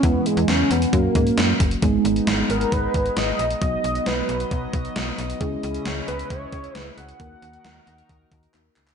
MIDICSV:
0, 0, Header, 1, 6, 480
1, 0, Start_track
1, 0, Tempo, 447761
1, 36, Time_signature, 4, 2, 24, 8
1, 9591, End_track
2, 0, Start_track
2, 0, Title_t, "Analog synth lead"
2, 0, Program_c, 0, 81
2, 37, Note_on_c, 0, 59, 104
2, 280, Note_on_c, 0, 56, 93
2, 296, Note_off_c, 0, 59, 0
2, 517, Note_on_c, 0, 61, 107
2, 533, Note_off_c, 0, 56, 0
2, 757, Note_on_c, 0, 59, 95
2, 774, Note_off_c, 0, 61, 0
2, 1000, Note_on_c, 0, 58, 89
2, 1017, Note_off_c, 0, 59, 0
2, 1719, Note_off_c, 0, 58, 0
2, 2683, Note_on_c, 0, 70, 89
2, 2921, Note_on_c, 0, 71, 97
2, 2937, Note_off_c, 0, 70, 0
2, 3402, Note_on_c, 0, 75, 111
2, 3418, Note_off_c, 0, 71, 0
2, 3872, Note_off_c, 0, 75, 0
2, 3879, Note_on_c, 0, 75, 108
2, 4359, Note_on_c, 0, 71, 88
2, 4375, Note_off_c, 0, 75, 0
2, 5078, Note_off_c, 0, 71, 0
2, 6517, Note_on_c, 0, 71, 82
2, 6740, Note_off_c, 0, 71, 0
2, 6755, Note_on_c, 0, 73, 98
2, 7270, Note_off_c, 0, 73, 0
2, 7270, Note_on_c, 0, 71, 98
2, 7433, Note_off_c, 0, 71, 0
2, 7473, Note_on_c, 0, 78, 113
2, 9112, Note_off_c, 0, 78, 0
2, 9591, End_track
3, 0, Start_track
3, 0, Title_t, "FM electric piano"
3, 0, Program_c, 1, 5
3, 35, Note_on_c, 1, 52, 68
3, 35, Note_on_c, 1, 56, 64
3, 35, Note_on_c, 1, 59, 62
3, 36, Note_on_c, 1, 64, 75
3, 976, Note_off_c, 1, 52, 0
3, 976, Note_off_c, 1, 59, 0
3, 977, Note_off_c, 1, 56, 0
3, 977, Note_off_c, 1, 64, 0
3, 997, Note_on_c, 1, 54, 68
3, 997, Note_on_c, 1, 58, 64
3, 997, Note_on_c, 1, 61, 62
3, 998, Note_on_c, 1, 66, 76
3, 1938, Note_off_c, 1, 54, 0
3, 1938, Note_off_c, 1, 58, 0
3, 1938, Note_off_c, 1, 61, 0
3, 1938, Note_off_c, 1, 66, 0
3, 1956, Note_on_c, 1, 63, 74
3, 1957, Note_on_c, 1, 68, 88
3, 1958, Note_on_c, 1, 56, 82
3, 1958, Note_on_c, 1, 59, 71
3, 3838, Note_off_c, 1, 63, 0
3, 3838, Note_off_c, 1, 68, 0
3, 3839, Note_off_c, 1, 56, 0
3, 3839, Note_off_c, 1, 59, 0
3, 3877, Note_on_c, 1, 54, 67
3, 3877, Note_on_c, 1, 59, 61
3, 3877, Note_on_c, 1, 63, 62
3, 3878, Note_on_c, 1, 66, 75
3, 5758, Note_off_c, 1, 54, 0
3, 5759, Note_off_c, 1, 59, 0
3, 5759, Note_off_c, 1, 63, 0
3, 5759, Note_off_c, 1, 66, 0
3, 5799, Note_on_c, 1, 61, 71
3, 5799, Note_on_c, 1, 64, 73
3, 5800, Note_on_c, 1, 56, 81
3, 5800, Note_on_c, 1, 68, 87
3, 7679, Note_off_c, 1, 61, 0
3, 7680, Note_off_c, 1, 56, 0
3, 7680, Note_off_c, 1, 64, 0
3, 7680, Note_off_c, 1, 68, 0
3, 7717, Note_on_c, 1, 58, 66
3, 7717, Note_on_c, 1, 66, 60
3, 7718, Note_on_c, 1, 63, 60
3, 7718, Note_on_c, 1, 70, 74
3, 9128, Note_off_c, 1, 58, 0
3, 9128, Note_off_c, 1, 66, 0
3, 9129, Note_off_c, 1, 63, 0
3, 9129, Note_off_c, 1, 70, 0
3, 9154, Note_on_c, 1, 63, 54
3, 9155, Note_on_c, 1, 58, 57
3, 9155, Note_on_c, 1, 66, 54
3, 9155, Note_on_c, 1, 70, 63
3, 9591, Note_off_c, 1, 58, 0
3, 9591, Note_off_c, 1, 63, 0
3, 9591, Note_off_c, 1, 66, 0
3, 9591, Note_off_c, 1, 70, 0
3, 9591, End_track
4, 0, Start_track
4, 0, Title_t, "Analog synth pad"
4, 0, Program_c, 2, 89
4, 1957, Note_on_c, 2, 63, 90
4, 1959, Note_on_c, 2, 56, 79
4, 1959, Note_on_c, 2, 59, 72
4, 3858, Note_off_c, 2, 56, 0
4, 3858, Note_off_c, 2, 63, 0
4, 3859, Note_off_c, 2, 59, 0
4, 3880, Note_on_c, 2, 54, 79
4, 3881, Note_on_c, 2, 59, 73
4, 3881, Note_on_c, 2, 75, 86
4, 5779, Note_off_c, 2, 54, 0
4, 5780, Note_off_c, 2, 59, 0
4, 5798, Note_on_c, 2, 49, 77
4, 5798, Note_on_c, 2, 61, 69
4, 5799, Note_on_c, 2, 64, 84
4, 7680, Note_off_c, 2, 75, 0
4, 7698, Note_off_c, 2, 49, 0
4, 7698, Note_off_c, 2, 61, 0
4, 7699, Note_off_c, 2, 64, 0
4, 7717, Note_on_c, 2, 70, 85
4, 7718, Note_on_c, 2, 51, 79
4, 7718, Note_on_c, 2, 63, 71
4, 7718, Note_on_c, 2, 66, 70
4, 9591, Note_off_c, 2, 51, 0
4, 9591, Note_off_c, 2, 63, 0
4, 9591, Note_off_c, 2, 66, 0
4, 9591, Note_off_c, 2, 70, 0
4, 9591, End_track
5, 0, Start_track
5, 0, Title_t, "FM bass"
5, 0, Program_c, 3, 39
5, 36, Note_on_c, 3, 40, 107
5, 204, Note_off_c, 3, 40, 0
5, 396, Note_on_c, 3, 40, 99
5, 480, Note_off_c, 3, 40, 0
5, 514, Note_on_c, 3, 40, 100
5, 683, Note_off_c, 3, 40, 0
5, 754, Note_on_c, 3, 40, 98
5, 923, Note_off_c, 3, 40, 0
5, 998, Note_on_c, 3, 42, 100
5, 1165, Note_off_c, 3, 42, 0
5, 1235, Note_on_c, 3, 44, 92
5, 1403, Note_off_c, 3, 44, 0
5, 1476, Note_on_c, 3, 42, 96
5, 1644, Note_off_c, 3, 42, 0
5, 1717, Note_on_c, 3, 30, 93
5, 1885, Note_off_c, 3, 30, 0
5, 1955, Note_on_c, 3, 32, 108
5, 2124, Note_off_c, 3, 32, 0
5, 2194, Note_on_c, 3, 32, 98
5, 2363, Note_off_c, 3, 32, 0
5, 2435, Note_on_c, 3, 32, 104
5, 2604, Note_off_c, 3, 32, 0
5, 2677, Note_on_c, 3, 32, 97
5, 2845, Note_off_c, 3, 32, 0
5, 2918, Note_on_c, 3, 32, 104
5, 3085, Note_off_c, 3, 32, 0
5, 3156, Note_on_c, 3, 32, 101
5, 3324, Note_off_c, 3, 32, 0
5, 3396, Note_on_c, 3, 32, 95
5, 3564, Note_off_c, 3, 32, 0
5, 3637, Note_on_c, 3, 34, 99
5, 3805, Note_off_c, 3, 34, 0
5, 3876, Note_on_c, 3, 35, 98
5, 4045, Note_off_c, 3, 35, 0
5, 4118, Note_on_c, 3, 35, 96
5, 4286, Note_off_c, 3, 35, 0
5, 4359, Note_on_c, 3, 35, 95
5, 4526, Note_off_c, 3, 35, 0
5, 4599, Note_on_c, 3, 35, 101
5, 4766, Note_off_c, 3, 35, 0
5, 4838, Note_on_c, 3, 35, 106
5, 5006, Note_off_c, 3, 35, 0
5, 5076, Note_on_c, 3, 35, 98
5, 5244, Note_off_c, 3, 35, 0
5, 5319, Note_on_c, 3, 35, 102
5, 5486, Note_off_c, 3, 35, 0
5, 5558, Note_on_c, 3, 35, 95
5, 5726, Note_off_c, 3, 35, 0
5, 5797, Note_on_c, 3, 37, 111
5, 5965, Note_off_c, 3, 37, 0
5, 6039, Note_on_c, 3, 37, 100
5, 6206, Note_off_c, 3, 37, 0
5, 6280, Note_on_c, 3, 37, 98
5, 6447, Note_off_c, 3, 37, 0
5, 6518, Note_on_c, 3, 37, 99
5, 6685, Note_off_c, 3, 37, 0
5, 6757, Note_on_c, 3, 37, 107
5, 6925, Note_off_c, 3, 37, 0
5, 6995, Note_on_c, 3, 37, 101
5, 7164, Note_off_c, 3, 37, 0
5, 7237, Note_on_c, 3, 37, 103
5, 7405, Note_off_c, 3, 37, 0
5, 7477, Note_on_c, 3, 37, 93
5, 7645, Note_off_c, 3, 37, 0
5, 7716, Note_on_c, 3, 39, 103
5, 7884, Note_off_c, 3, 39, 0
5, 7956, Note_on_c, 3, 39, 101
5, 8124, Note_off_c, 3, 39, 0
5, 8197, Note_on_c, 3, 39, 97
5, 8365, Note_off_c, 3, 39, 0
5, 8436, Note_on_c, 3, 39, 97
5, 8604, Note_off_c, 3, 39, 0
5, 8678, Note_on_c, 3, 39, 105
5, 8845, Note_off_c, 3, 39, 0
5, 8915, Note_on_c, 3, 39, 107
5, 9083, Note_off_c, 3, 39, 0
5, 9159, Note_on_c, 3, 39, 98
5, 9326, Note_off_c, 3, 39, 0
5, 9399, Note_on_c, 3, 37, 93
5, 9566, Note_off_c, 3, 37, 0
5, 9591, End_track
6, 0, Start_track
6, 0, Title_t, "Drums"
6, 35, Note_on_c, 9, 36, 107
6, 36, Note_on_c, 9, 42, 82
6, 143, Note_off_c, 9, 36, 0
6, 143, Note_off_c, 9, 42, 0
6, 278, Note_on_c, 9, 42, 71
6, 385, Note_off_c, 9, 42, 0
6, 398, Note_on_c, 9, 42, 43
6, 505, Note_off_c, 9, 42, 0
6, 516, Note_on_c, 9, 38, 122
6, 517, Note_on_c, 9, 42, 81
6, 623, Note_off_c, 9, 38, 0
6, 624, Note_off_c, 9, 42, 0
6, 758, Note_on_c, 9, 42, 87
6, 865, Note_off_c, 9, 42, 0
6, 879, Note_on_c, 9, 42, 56
6, 986, Note_off_c, 9, 42, 0
6, 997, Note_on_c, 9, 36, 89
6, 1000, Note_on_c, 9, 42, 72
6, 1105, Note_off_c, 9, 36, 0
6, 1107, Note_off_c, 9, 42, 0
6, 1235, Note_on_c, 9, 36, 96
6, 1237, Note_on_c, 9, 42, 73
6, 1342, Note_off_c, 9, 36, 0
6, 1345, Note_off_c, 9, 42, 0
6, 1358, Note_on_c, 9, 42, 51
6, 1465, Note_off_c, 9, 42, 0
6, 1474, Note_on_c, 9, 42, 75
6, 1475, Note_on_c, 9, 38, 108
6, 1581, Note_off_c, 9, 42, 0
6, 1583, Note_off_c, 9, 38, 0
6, 1717, Note_on_c, 9, 36, 91
6, 1718, Note_on_c, 9, 42, 87
6, 1824, Note_off_c, 9, 36, 0
6, 1825, Note_off_c, 9, 42, 0
6, 1836, Note_on_c, 9, 42, 55
6, 1944, Note_off_c, 9, 42, 0
6, 1955, Note_on_c, 9, 42, 83
6, 1956, Note_on_c, 9, 36, 101
6, 2062, Note_off_c, 9, 42, 0
6, 2063, Note_off_c, 9, 36, 0
6, 2198, Note_on_c, 9, 42, 72
6, 2305, Note_off_c, 9, 42, 0
6, 2318, Note_on_c, 9, 42, 43
6, 2425, Note_off_c, 9, 42, 0
6, 2436, Note_on_c, 9, 38, 116
6, 2437, Note_on_c, 9, 42, 80
6, 2543, Note_off_c, 9, 38, 0
6, 2544, Note_off_c, 9, 42, 0
6, 2679, Note_on_c, 9, 42, 83
6, 2786, Note_off_c, 9, 42, 0
6, 2800, Note_on_c, 9, 42, 55
6, 2907, Note_off_c, 9, 42, 0
6, 2918, Note_on_c, 9, 36, 88
6, 2920, Note_on_c, 9, 42, 72
6, 3026, Note_off_c, 9, 36, 0
6, 3027, Note_off_c, 9, 42, 0
6, 3156, Note_on_c, 9, 36, 93
6, 3157, Note_on_c, 9, 42, 70
6, 3263, Note_off_c, 9, 36, 0
6, 3264, Note_off_c, 9, 42, 0
6, 3276, Note_on_c, 9, 42, 48
6, 3383, Note_off_c, 9, 42, 0
6, 3394, Note_on_c, 9, 42, 71
6, 3396, Note_on_c, 9, 38, 102
6, 3501, Note_off_c, 9, 42, 0
6, 3503, Note_off_c, 9, 38, 0
6, 3638, Note_on_c, 9, 42, 81
6, 3745, Note_off_c, 9, 42, 0
6, 3757, Note_on_c, 9, 42, 55
6, 3865, Note_off_c, 9, 42, 0
6, 3875, Note_on_c, 9, 42, 78
6, 3876, Note_on_c, 9, 36, 103
6, 3983, Note_off_c, 9, 42, 0
6, 3984, Note_off_c, 9, 36, 0
6, 4120, Note_on_c, 9, 42, 69
6, 4227, Note_off_c, 9, 42, 0
6, 4238, Note_on_c, 9, 42, 41
6, 4345, Note_off_c, 9, 42, 0
6, 4356, Note_on_c, 9, 38, 115
6, 4357, Note_on_c, 9, 42, 78
6, 4463, Note_off_c, 9, 38, 0
6, 4464, Note_off_c, 9, 42, 0
6, 4599, Note_on_c, 9, 42, 80
6, 4706, Note_off_c, 9, 42, 0
6, 4719, Note_on_c, 9, 42, 57
6, 4826, Note_off_c, 9, 42, 0
6, 4838, Note_on_c, 9, 36, 89
6, 4839, Note_on_c, 9, 42, 71
6, 4945, Note_off_c, 9, 36, 0
6, 4946, Note_off_c, 9, 42, 0
6, 5076, Note_on_c, 9, 36, 91
6, 5076, Note_on_c, 9, 42, 73
6, 5183, Note_off_c, 9, 36, 0
6, 5183, Note_off_c, 9, 42, 0
6, 5197, Note_on_c, 9, 42, 47
6, 5305, Note_off_c, 9, 42, 0
6, 5316, Note_on_c, 9, 42, 68
6, 5317, Note_on_c, 9, 38, 104
6, 5423, Note_off_c, 9, 42, 0
6, 5425, Note_off_c, 9, 38, 0
6, 5558, Note_on_c, 9, 42, 83
6, 5665, Note_off_c, 9, 42, 0
6, 5679, Note_on_c, 9, 42, 54
6, 5786, Note_off_c, 9, 42, 0
6, 5797, Note_on_c, 9, 36, 105
6, 5797, Note_on_c, 9, 42, 81
6, 5904, Note_off_c, 9, 36, 0
6, 5905, Note_off_c, 9, 42, 0
6, 6039, Note_on_c, 9, 42, 67
6, 6147, Note_off_c, 9, 42, 0
6, 6158, Note_on_c, 9, 42, 41
6, 6265, Note_off_c, 9, 42, 0
6, 6277, Note_on_c, 9, 38, 111
6, 6278, Note_on_c, 9, 42, 77
6, 6384, Note_off_c, 9, 38, 0
6, 6385, Note_off_c, 9, 42, 0
6, 6518, Note_on_c, 9, 42, 82
6, 6625, Note_off_c, 9, 42, 0
6, 6639, Note_on_c, 9, 42, 54
6, 6746, Note_off_c, 9, 42, 0
6, 6758, Note_on_c, 9, 36, 86
6, 6760, Note_on_c, 9, 42, 70
6, 6865, Note_off_c, 9, 36, 0
6, 6867, Note_off_c, 9, 42, 0
6, 6995, Note_on_c, 9, 36, 90
6, 6997, Note_on_c, 9, 42, 72
6, 7102, Note_off_c, 9, 36, 0
6, 7104, Note_off_c, 9, 42, 0
6, 7116, Note_on_c, 9, 42, 47
6, 7224, Note_off_c, 9, 42, 0
6, 7236, Note_on_c, 9, 42, 70
6, 7238, Note_on_c, 9, 38, 101
6, 7343, Note_off_c, 9, 42, 0
6, 7345, Note_off_c, 9, 38, 0
6, 7478, Note_on_c, 9, 42, 78
6, 7586, Note_off_c, 9, 42, 0
6, 7596, Note_on_c, 9, 42, 54
6, 7703, Note_off_c, 9, 42, 0
6, 7716, Note_on_c, 9, 36, 99
6, 7717, Note_on_c, 9, 42, 76
6, 7823, Note_off_c, 9, 36, 0
6, 7824, Note_off_c, 9, 42, 0
6, 7959, Note_on_c, 9, 42, 69
6, 8066, Note_off_c, 9, 42, 0
6, 8077, Note_on_c, 9, 42, 40
6, 8184, Note_off_c, 9, 42, 0
6, 8196, Note_on_c, 9, 38, 114
6, 8197, Note_on_c, 9, 42, 75
6, 8303, Note_off_c, 9, 38, 0
6, 8304, Note_off_c, 9, 42, 0
6, 8438, Note_on_c, 9, 42, 81
6, 8545, Note_off_c, 9, 42, 0
6, 8559, Note_on_c, 9, 42, 53
6, 8666, Note_off_c, 9, 42, 0
6, 8677, Note_on_c, 9, 36, 85
6, 8680, Note_on_c, 9, 42, 68
6, 8785, Note_off_c, 9, 36, 0
6, 8787, Note_off_c, 9, 42, 0
6, 8915, Note_on_c, 9, 36, 86
6, 8917, Note_on_c, 9, 42, 70
6, 9022, Note_off_c, 9, 36, 0
6, 9024, Note_off_c, 9, 42, 0
6, 9036, Note_on_c, 9, 42, 46
6, 9144, Note_off_c, 9, 42, 0
6, 9154, Note_on_c, 9, 42, 68
6, 9156, Note_on_c, 9, 39, 52
6, 9261, Note_off_c, 9, 42, 0
6, 9263, Note_off_c, 9, 39, 0
6, 9395, Note_on_c, 9, 39, 80
6, 9396, Note_on_c, 9, 42, 80
6, 9502, Note_off_c, 9, 39, 0
6, 9503, Note_off_c, 9, 42, 0
6, 9516, Note_on_c, 9, 39, 84
6, 9516, Note_on_c, 9, 42, 53
6, 9591, Note_off_c, 9, 39, 0
6, 9591, Note_off_c, 9, 42, 0
6, 9591, End_track
0, 0, End_of_file